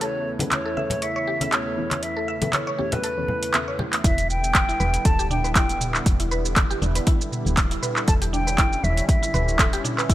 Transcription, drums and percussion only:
0.01 closed hi-hat
0.39 closed hi-hat, high conga, low conga
0.52 clap, closed hi-hat, high conga
0.77 high conga
0.90 closed hi-hat, low conga
1.02 closed hi-hat
1.41 closed hi-hat, high conga
1.52 clap, closed hi-hat
1.91 clap, closed hi-hat, high conga
2.03 closed hi-hat
2.42 closed hi-hat, high conga, low conga
2.53 clap, closed hi-hat, high conga
2.79 high conga
2.92 closed hi-hat, low conga
3.04 closed hi-hat
3.28 low conga
3.43 closed hi-hat
3.54 clap, closed hi-hat
3.79 high conga, low conga
3.93 clap, closed hi-hat
4.04 kick, closed hi-hat, shaker
4.18 closed hi-hat, shaker
4.30 shaker
4.44 shaker
4.55 kick, clap, closed hi-hat, shaker
4.69 shaker
4.80 shaker
4.94 closed hi-hat, shaker
5.05 kick, closed hi-hat, shaker
5.19 shaker
5.30 mid tom, shaker
5.45 shaker
5.56 kick, clap, closed hi-hat, shaker
5.69 closed hi-hat, shaker
5.81 mid tom, shaker
5.95 clap, shaker
6.06 kick, closed hi-hat, shaker
6.20 closed hi-hat, shaker
6.32 shaker
6.45 shaker
6.56 kick, clap, closed hi-hat, shaker
6.71 shaker
6.82 shaker
6.95 closed hi-hat, shaker
7.07 kick, closed hi-hat, shaker
7.21 shaker
7.32 mid tom, shaker
7.47 shaker
7.57 kick, clap, closed hi-hat, shaker
7.71 closed hi-hat, shaker
7.83 mid tom, shaker
7.96 clap, shaker
8.08 kick, closed hi-hat, shaker
8.22 closed hi-hat, shaker
8.34 shaker
8.48 shaker
8.58 kick, clap, closed hi-hat, shaker
8.73 shaker
8.84 shaker
8.97 closed hi-hat, shaker
9.09 kick, closed hi-hat, shaker
9.23 shaker
9.34 mid tom, shaker
9.48 shaker
9.59 kick, clap, closed hi-hat, shaker
9.73 closed hi-hat, shaker
9.85 mid tom, shaker
9.98 clap, shaker
10.10 kick, closed hi-hat, shaker

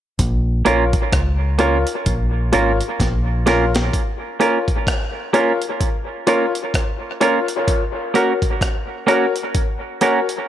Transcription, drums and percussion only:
0.19 kick, closed hi-hat
0.66 closed hi-hat
0.93 kick, closed hi-hat
1.12 kick, cross-stick, closed hi-hat
1.59 closed hi-hat
1.87 closed hi-hat
2.06 kick, closed hi-hat
2.53 closed hi-hat
2.81 closed hi-hat
3.00 kick, snare, closed hi-hat
3.47 snare, closed hi-hat
3.75 snare, closed hi-hat
3.93 kick, closed hi-hat
4.41 closed hi-hat
4.68 kick, closed hi-hat
4.87 kick, cross-stick, closed hi-hat
5.34 closed hi-hat
5.62 closed hi-hat
5.81 kick, closed hi-hat
6.27 closed hi-hat
6.55 closed hi-hat
6.74 kick, cross-stick, closed hi-hat
7.21 closed hi-hat
7.48 closed hi-hat
7.68 kick, closed hi-hat
8.15 closed hi-hat
8.42 kick, closed hi-hat
8.61 kick, cross-stick, closed hi-hat
9.08 closed hi-hat
9.36 closed hi-hat
9.55 kick, closed hi-hat
10.01 closed hi-hat
10.29 closed hi-hat

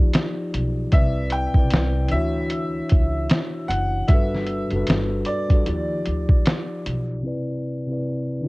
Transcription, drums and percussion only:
0.13 snare, closed hi-hat
0.54 closed hi-hat
0.92 kick, closed hi-hat
1.30 closed hi-hat
1.54 kick
1.71 snare, closed hi-hat
2.08 closed hi-hat
2.50 closed hi-hat
2.90 kick, closed hi-hat
3.30 snare, closed hi-hat
3.71 closed hi-hat
4.08 kick, closed hi-hat
4.35 snare
4.47 closed hi-hat
4.71 closed hi-hat
4.87 snare, closed hi-hat
5.25 closed hi-hat
5.50 kick, closed hi-hat
5.66 closed hi-hat
6.06 closed hi-hat
6.29 kick
6.46 snare, closed hi-hat
6.86 closed hi-hat

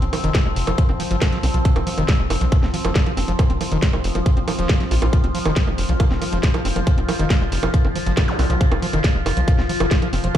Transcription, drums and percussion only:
0.02 closed hi-hat
0.13 open hi-hat, high bongo
0.24 closed hi-hat
0.35 kick, snare, closed hi-hat, high bongo
0.56 open hi-hat
0.67 closed hi-hat, high bongo
0.78 kick, closed hi-hat
0.89 high bongo
1.00 open hi-hat
1.11 closed hi-hat
1.22 kick, snare, closed hi-hat, high bongo
1.32 snare, closed hi-hat
1.43 open hi-hat, high bongo
1.54 closed hi-hat
1.65 kick, closed hi-hat
1.76 closed hi-hat, high bongo
1.87 open hi-hat
1.98 closed hi-hat, high bongo
2.09 kick, snare, closed hi-hat
2.30 open hi-hat, high bongo
2.41 closed hi-hat
2.52 kick, closed hi-hat, high bongo
2.63 snare
2.74 open hi-hat
2.85 closed hi-hat, high bongo
2.95 kick, snare, closed hi-hat
3.06 closed hi-hat, high bongo
3.17 open hi-hat
3.28 closed hi-hat
3.39 kick, closed hi-hat, high bongo
3.50 closed hi-hat
3.61 open hi-hat, high bongo
3.72 closed hi-hat
3.82 kick, snare, closed hi-hat
3.93 high bongo
4.04 open hi-hat
4.15 closed hi-hat, high bongo
4.26 kick, closed hi-hat
4.37 closed hi-hat
4.48 open hi-hat, high bongo
4.59 closed hi-hat
4.69 kick, snare, closed hi-hat, high bongo
4.80 snare, closed hi-hat
4.91 open hi-hat
5.02 closed hi-hat, high bongo
5.13 kick, closed hi-hat, high bongo
5.24 closed hi-hat
5.35 open hi-hat
5.46 closed hi-hat, high bongo
5.56 kick, snare, closed hi-hat
5.67 high bongo
5.78 open hi-hat
5.89 closed hi-hat
6.00 kick, closed hi-hat, high bongo
6.11 snare
6.22 open hi-hat, high bongo
6.32 closed hi-hat
6.43 kick, snare, closed hi-hat
6.54 closed hi-hat, high bongo
6.65 open hi-hat
6.76 closed hi-hat, high bongo
6.87 kick, closed hi-hat
6.98 closed hi-hat
7.09 open hi-hat, high bongo
7.19 closed hi-hat
7.30 kick, snare, closed hi-hat, high bongo
7.52 open hi-hat
7.63 closed hi-hat, high bongo
7.74 kick, closed hi-hat
7.85 high bongo
7.96 open hi-hat
8.06 closed hi-hat
8.17 kick, snare, closed hi-hat, high bongo
8.28 snare, closed hi-hat
8.39 open hi-hat, high bongo
8.50 closed hi-hat
8.61 kick, closed hi-hat
8.72 closed hi-hat, high bongo
8.82 open hi-hat
8.93 closed hi-hat, high bongo
9.04 kick, snare, closed hi-hat
9.26 open hi-hat, high bongo
9.37 closed hi-hat
9.48 kick, closed hi-hat, high bongo
9.59 snare
9.69 open hi-hat
9.80 closed hi-hat, high bongo
9.91 kick, snare, closed hi-hat
10.02 closed hi-hat, high bongo
10.13 open hi-hat
10.24 closed hi-hat
10.35 kick, closed hi-hat, high bongo

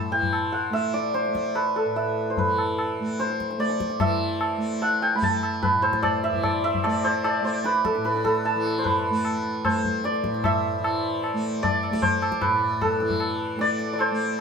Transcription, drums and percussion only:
0.12 tabla te
0.23 tabla ge
0.33 tabla na
0.73 tabla te
0.94 tabla te
1.15 tabla te
1.25 tabla te
1.35 tabla ke
1.46 tabla te
1.55 tabla na
1.97 tabla tin
2.37 tabla tin, tabla ge
2.58 tabla na
2.79 tabla na
3.20 tabla te
3.30 tabla te
3.40 tabla ke
3.51 tabla te
3.60 tabla te
3.70 tabla te
3.80 tabla ke
3.90 tabla te
4.00 tabla na, tabla ge
4.41 tabla na
4.82 tabla na
5.02 tabla na
5.22 tabla tin, tabla ge
5.43 tabla na
5.63 tabla tin, tabla ge
5.83 tabla na
5.93 tabla ke
6.03 tabla na, tabla ge
6.24 tabla te
6.33 tabla ge
6.43 tabla na, tabla ge
6.64 tabla te
6.74 tabla ge
6.84 tabla na
7.04 tabla na
7.24 tabla na
7.64 tabla te
7.74 tabla te
7.85 tabla ke
7.95 tabla te
8.05 tabla te
8.15 tabla te
8.25 tabla ke
8.35 tabla te
8.44 tabla tin
8.65 tabla na
8.85 tabla tin, tabla ge
9.25 tabla na
9.65 tabla na, tabla ge
9.84 tabla ge
10.04 tabla te
10.14 tabla te
10.24 tabla ke
10.34 tabla te
10.44 tabla na, tabla ge
10.84 tabla na
11.24 tabla na
11.64 tabla tin, tabla ge
11.83 tabla na
11.93 tabla ke
12.02 tabla tin, tabla ge
12.22 tabla na
12.32 tabla ke
12.41 tabla na, tabla ge
12.81 tabla na, tabla ge
13.00 tabla te
13.10 tabla ge
13.20 tabla na
13.59 tabla te
13.79 tabla te
13.99 tabla na

